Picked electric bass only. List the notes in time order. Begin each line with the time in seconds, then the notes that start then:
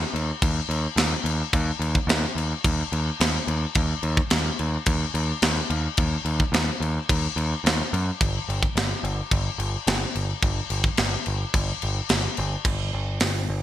0.14 D#2
0.42 D#2
0.69 D#2
0.96 D#2
1.24 D#2
1.53 D#2
1.79 D#2
2.07 D#2
2.35 D#2
2.65 D#2
2.92 D#2
3.20 D#2
3.47 D#2
3.76 D#2
4.03 D#2
4.32 D#2
4.60 D#2
4.87 D#2
5.14 D#2
5.42 D#2
5.70 D#2
5.99 D#2
6.25 D#2
6.52 D#2
6.80 D#2
7.09 D#2
7.36 D#2
7.64 D#2
7.93 F#2
8.21 G1
8.49 G1
8.75 G1
9.03 G1
9.32 G1
9.58 G1
9.87 G1
10.15 G1
10.43 G1
10.70 G1
10.99 G1
11.27 G1
11.54 G1
11.83 G1
12.10 G1
12.38 G1
12.65 G1
12.93 G1
13.21 G1
13.49 G1